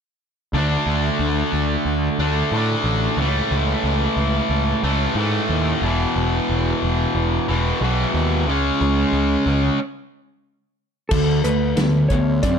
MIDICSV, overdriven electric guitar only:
0, 0, Header, 1, 2, 480
1, 0, Start_track
1, 0, Tempo, 661521
1, 390, Time_signature, 4, 2, 24, 8
1, 9135, End_track
2, 0, Start_track
2, 0, Title_t, "Overdriven electric guitar"
2, 0, Program_c, 0, 29
2, 393, Note_on_c, 0, 50, 74
2, 403, Note_on_c, 0, 57, 82
2, 416, Note_on_c, 0, 62, 84
2, 1580, Note_off_c, 0, 50, 0
2, 1586, Note_off_c, 0, 57, 0
2, 1587, Note_off_c, 0, 62, 0
2, 1595, Note_on_c, 0, 62, 64
2, 1606, Note_on_c, 0, 57, 61
2, 1613, Note_on_c, 0, 50, 56
2, 1821, Note_off_c, 0, 62, 0
2, 1826, Note_off_c, 0, 57, 0
2, 1829, Note_off_c, 0, 50, 0
2, 1839, Note_on_c, 0, 50, 57
2, 1850, Note_on_c, 0, 57, 65
2, 1864, Note_on_c, 0, 62, 69
2, 2303, Note_off_c, 0, 50, 0
2, 2308, Note_off_c, 0, 57, 0
2, 2316, Note_off_c, 0, 62, 0
2, 2316, Note_on_c, 0, 45, 69
2, 2326, Note_on_c, 0, 52, 79
2, 2339, Note_on_c, 0, 57, 77
2, 3502, Note_off_c, 0, 45, 0
2, 3502, Note_off_c, 0, 57, 0
2, 3511, Note_on_c, 0, 57, 65
2, 3518, Note_off_c, 0, 52, 0
2, 3521, Note_on_c, 0, 52, 71
2, 3533, Note_on_c, 0, 45, 58
2, 3739, Note_off_c, 0, 57, 0
2, 3743, Note_off_c, 0, 45, 0
2, 3751, Note_on_c, 0, 45, 73
2, 3761, Note_off_c, 0, 52, 0
2, 3764, Note_on_c, 0, 52, 68
2, 3774, Note_on_c, 0, 57, 80
2, 4219, Note_off_c, 0, 45, 0
2, 4226, Note_on_c, 0, 40, 89
2, 4231, Note_off_c, 0, 57, 0
2, 4240, Note_on_c, 0, 47, 82
2, 4243, Note_off_c, 0, 52, 0
2, 4245, Note_on_c, 0, 52, 93
2, 5416, Note_off_c, 0, 40, 0
2, 5421, Note_off_c, 0, 52, 0
2, 5423, Note_off_c, 0, 47, 0
2, 5430, Note_on_c, 0, 52, 66
2, 5443, Note_on_c, 0, 47, 59
2, 5452, Note_on_c, 0, 40, 58
2, 5658, Note_off_c, 0, 52, 0
2, 5662, Note_off_c, 0, 40, 0
2, 5665, Note_off_c, 0, 47, 0
2, 5670, Note_on_c, 0, 40, 60
2, 5682, Note_on_c, 0, 47, 64
2, 5694, Note_on_c, 0, 52, 69
2, 6137, Note_off_c, 0, 40, 0
2, 6143, Note_off_c, 0, 47, 0
2, 6149, Note_off_c, 0, 52, 0
2, 6151, Note_on_c, 0, 49, 76
2, 6162, Note_on_c, 0, 56, 87
2, 6172, Note_on_c, 0, 61, 90
2, 7096, Note_off_c, 0, 49, 0
2, 7101, Note_off_c, 0, 56, 0
2, 7107, Note_off_c, 0, 61, 0
2, 8079, Note_on_c, 0, 50, 82
2, 8080, Note_on_c, 0, 57, 81
2, 8289, Note_off_c, 0, 50, 0
2, 8290, Note_off_c, 0, 57, 0
2, 8308, Note_on_c, 0, 50, 62
2, 8313, Note_on_c, 0, 57, 76
2, 8523, Note_off_c, 0, 50, 0
2, 8526, Note_off_c, 0, 57, 0
2, 8543, Note_on_c, 0, 50, 72
2, 8549, Note_on_c, 0, 59, 74
2, 8761, Note_off_c, 0, 50, 0
2, 8763, Note_off_c, 0, 59, 0
2, 8795, Note_on_c, 0, 50, 63
2, 8796, Note_on_c, 0, 59, 71
2, 9006, Note_off_c, 0, 50, 0
2, 9007, Note_off_c, 0, 59, 0
2, 9032, Note_on_c, 0, 60, 81
2, 9033, Note_on_c, 0, 50, 73
2, 9135, Note_off_c, 0, 50, 0
2, 9135, Note_off_c, 0, 60, 0
2, 9135, End_track
0, 0, End_of_file